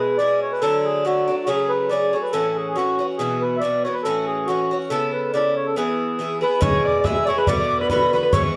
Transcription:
Already playing: bouzouki B2 G#3 E4 G#4
0.00 accordion B4
0.18 bouzouki B2 G#3 E4 G#4, accordion D5
0.42 accordion C#5
0.52 accordion B4
0.61 bouzouki D3 F#3 A3 D4, accordion A4
0.85 accordion G#4
1.05 bouzouki D3 F#3 A3 D4, accordion F#4
1.28 bouzouki F#3 A3 D4
1.43 bouzouki C#3, accordion F#4
1.48 bouzouki F#3 A3 G#4, accordion G#4
1.69 accordion B4
1.89 bouzouki C#3 F#3 A3 G#4, accordion D5
2.13 bouzouki F#3 A3 G#4, accordion C#5
2.22 accordion B4
2.32 bouzouki A2 E3 C#4 F#4, accordion A4
2.56 accordion G#4
2.70 accordion G#4
2.75 bouzouki A2 E3 C#4 F#4, accordion F#4
2.99 bouzouki E3 C#4 F#4
3.18 bouzouki B2 E3 B3 F#4, accordion G#4
3.41 accordion B4
3.57 accordion D5 E5
3.62 bouzouki B2 E3 B3 F#4
3.84 bouzouki E3 B3 F#4, accordion C#5
3.94 accordion B4
4.03 bouzouki A2 E3 C#4 F#4, accordion A4
4.27 accordion G#4
4.47 bouzouki A2 E3 C#4 F#4, accordion F#4
4.71 bouzouki E3 C#4 F#4
4.90 bouzouki C#3 B3 E4 A4, accordion A4
5.13 accordion B4
5.34 bouzouki C#3 B3 E4 A4, accordion D5
5.56 accordion C#5
5.66 accordion A4
5.76 bouzouki E3 B3 E4 G#4, accordion G#4
6.19 bouzouki E3 B3 E4 G#4
6.41 bouzouki B3 E4 G#4, harp B4, accordion B4, tin whistle B5
6.61 bouzouki B2 G#3 E4 G#4, harp C#5, accordion C#5, tin whistle C#6, bodhran
6.85 harp D5, accordion D5, tin whistle D6
7.00 accordion D5
7.04 bouzouki B2 G#3 E4 G#4, harp E5, accordion E5, tin whistle E6, bodhran
7.25 bouzouki E4 G#4, harp C#5, accordion C#5 D5, tin whistle C#6
7.30 bouzouki G#3
7.38 harp B4, accordion B4, tin whistle B5
7.47 bouzouki B2 D3 B3 F#4, harp D5, accordion D5, tin whistle D6, bodhran
7.59 accordion D5, harp D5
7.80 accordion B4, harp B4, tin whistle B5
7.90 bouzouki B2 D3 B3 F#4, accordion B4, harp B4, tin whistle B5, bodhran
8.13 bouzouki D3 B3 F#4, accordion B4, harp B4, tin whistle B5
8.19 harp B4
8.23 harp B4
8.33 bouzouki G#2 E3 B3 F#4, accordion C#5, harp C#5, tin whistle C#6, bodhran

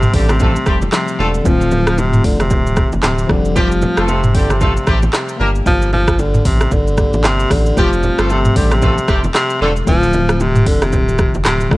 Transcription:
Already playing: tenor saxophone C3, tine electric piano F3 G3 A3 C4 G4
0.03 mid tom, shaker
0.14 sub bass A1, tenor saxophone D3, horn section G3 A3 C4 G4, kick, open hi-hat
0.29 tenor saxophone C3, cross-stick, low bongo, shaker
0.40 horn section A3 C4 F4 A4, kick, low conga, shaker
0.56 shaker
0.66 sub bass F1, horn section G3 A3 C4 G4, kick, cross-stick, shaker
0.82 low bongo, shaker
0.91 tenor saxophone C3, tine electric piano F3 G3 A3 C4 G4, cross-stick, clap, high bongo, shaker
1.08 shaker
1.19 sub bass E1, tenor saxophone D3, horn section A3 C4 F4 A4, low bongo
1.34 shaker
1.43 sub bass D1, tine electric piano D3 F3 A3 C4, tenor saxophone F3, kick, low conga, shaker
1.48 tine electric piano F4
1.61 shaker
1.71 low bongo, low conga, shaker
1.87 cross-stick, shaker
1.98 tenor saxophone C3, high bongo, shaker
2.13 mid tom, shaker
2.24 sub bass F1, tenor saxophone D3, kick, open hi-hat
2.40 tenor saxophone C3, cross-stick, low bongo, shaker
2.50 sub bass D1, kick, low conga, shaker
2.66 shaker
2.76 kick, cross-stick, shaker
2.92 sub bass F1, low bongo, shaker
3.03 sub bass D1, tenor saxophone C3, cross-stick, clap, high bongo, shaker
3.18 shaker
3.27 sub bass F1, tenor saxophone D3, tine electric piano F3 G3 A3 C4, kick, cross-stick, low bongo
3.32 tine electric piano G4
3.45 shaker
3.56 tenor saxophone F3, horn section G3 A3 C4 G4, kick, low conga, shaker
3.72 shaker
3.82 low bongo, low conga, shaker
3.97 sub bass F1, horn section A3 C4 F4 A4, cross-stick, shaker
4.08 tenor saxophone C3, high bongo, shaker
4.24 mid tom, shaker
4.35 sub bass G1, tenor saxophone D3, horn section G3 A3 C4 G4, kick, open hi-hat
4.50 tenor saxophone C3, cross-stick, low bongo, shaker
4.61 horn section A3 C4 F4 A4, kick, low conga, shaker
4.77 shaker
4.87 sub bass A1, horn section G3 A3 C4 G4, kick, cross-stick, shaker
5.03 low bongo, shaker
5.13 tenor saxophone C3, cross-stick, clap, high bongo, shaker
5.29 shaker
5.37 sub bass G1, tine electric piano A#3 D4, horn section A#3 D4 G4 A#4, low bongo
5.42 tine electric piano G4
5.55 shaker
5.66 sub bass G1, tenor saxophone F3, kick, low conga, shaker
5.82 shaker
5.93 tenor saxophone F3, low bongo, low conga
6.08 kick, cross-stick, shaker
6.19 tenor saxophone D3, high bongo, shaker
6.34 mid tom, shaker
6.45 sub bass A1, tenor saxophone C3, kick, open hi-hat, shaker
6.61 cross-stick, low bongo, shaker
6.71 sub bass G1, tenor saxophone D3, kick, low conga, shaker
6.87 shaker
6.97 tine electric piano A#3 D4 G4, kick, cross-stick, mid tom, shaker
7.13 sub bass A1, low bongo, shaker
7.24 sub bass G1, tenor saxophone C3, cross-stick, clap, high bongo, shaker
7.39 shaker
7.50 sub bass A1, tenor saxophone D3, kick, cross-stick, open hi-hat, low bongo, shaker
7.66 shaker
7.74 sub bass F1, tine electric piano F3 G3 A3 C4, tenor saxophone F3, horn section G3 A3 C4 G4, kick, low conga, shaker
7.79 tine electric piano G4
7.93 shaker
8.03 low bongo, low conga, shaker
8.18 sub bass G1, horn section A3 C4 F4 A4, cross-stick, shaker
8.29 tenor saxophone C3, high bongo, shaker
8.45 mid tom, shaker
8.56 sub bass A1, tenor saxophone D3, horn section G3 A3 C4 G4, kick, open hi-hat
8.71 tenor saxophone C3, cross-stick, low bongo, shaker
8.82 horn section A3 C4 F4 A4, kick, low conga, shaker
8.98 shaker
9.08 sub bass F1, horn section G3 A3 C4 G4, kick, cross-stick, shaker
9.24 low bongo, shaker
9.34 tenor saxophone C3, cross-stick, clap, high bongo, shaker
9.50 shaker
9.61 sub bass E1, tenor saxophone D3, horn section A3 C4 F4 A4, low bongo
9.76 shaker
9.85 sub bass D1, tine electric piano D3 F3 A3 C4, tenor saxophone F3, kick, low conga, shaker
9.90 tine electric piano F4
10.03 shaker
10.13 low bongo, low conga, shaker
10.29 cross-stick, shaker
10.40 tenor saxophone C3, high bongo, shaker
10.55 mid tom, shaker
10.66 sub bass F1, tenor saxophone D3, kick, open hi-hat
10.82 tenor saxophone C3, cross-stick, low bongo, shaker
10.92 sub bass D1, kick, low conga, shaker
11.08 shaker
11.18 kick, cross-stick, shaker
11.34 sub bass F1, low bongo, shaker
11.45 sub bass D1, tenor saxophone C3, cross-stick, clap, high bongo, shaker
11.60 shaker
11.69 sub bass F1, tine electric piano C3 F3 G3 A3, tenor saxophone D3, kick, cross-stick, low bongo

